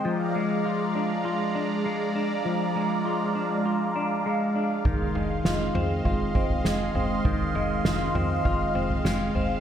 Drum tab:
SD |----------------|----------------|----o-------o---|----o-------o---|
FT |----------------|----------------|o-----o-o--o--o-|o-----o-o--o--o-|
BD |----------------|----------------|o-------o-o-----|o-------o-------|